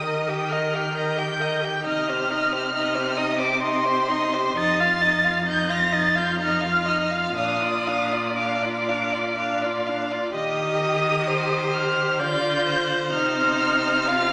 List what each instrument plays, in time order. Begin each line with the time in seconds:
Already playing: cello D#3, violin D#6
0.04 viola A#4, violin D#5
0.28 viola G4, violin G5
0.49 viola A#4, violin D#5 F6
0.73 viola G4, violin G5
0.95 viola A#4, violin D#5 G6
1.17 viola G4, violin G5
1.39 viola A#4, violin D#5
1.62 viola G4, violin G5
1.84 cello C3, viola D#4, violin D#5 F6
2.08 viola G4, violin C5
2.30 viola D#4, violin D#5
2.52 viola G4, violin C5
2.74 viola D#4, violin D#5
2.95 viola G4, violin C5
3.17 viola D#4, violin D#5 D#6
3.39 viola G4, violin C5 D6
3.61 viola D#4, violin D#5 C6
3.84 viola G4, violin C5
4.08 viola D#4, violin D#5
4.33 viola G4, violin C5
4.57 cello F2, viola D#4, violin D#5 A6
4.80 viola F4, violin F5
5.02 viola D#4, violin D#5
5.24 viola F4, violin F5
5.46 viola D#4, violin D#5 G6
5.69 viola F4, violin F5 A#6
5.92 viola D#4, violin D#5 A6
6.15 viola F4, violin F5 G6
6.39 viola D#4, violin D#5 F6
6.61 viola F4, violin F5
6.86 viola D#4, violin D#5
7.11 viola F4, violin F5
7.36 cello A#2, viola D4, violin F5 D#6
7.62 viola F4, violin D5
7.87 viola D4, violin F5
8.13 viola F4, violin D5
8.36 viola D4, violin F5 D6
8.62 viola F4, violin D5
8.89 viola D4, violin F5
9.13 viola F4, violin D5
9.37 viola D4, violin F5
9.62 viola F4, violin D5
9.87 viola D4, violin F5
10.11 viola F4, violin D5
10.34 cello D#3, viola G4, violin D#5 D#6
11.28 violin C5
11.73 violin F6
12.20 cello D3, viola F4, violin D5 G6
12.67 violin C5
13.13 cello C3, viola D#4, violin F6
14.08 viola F4, violin F5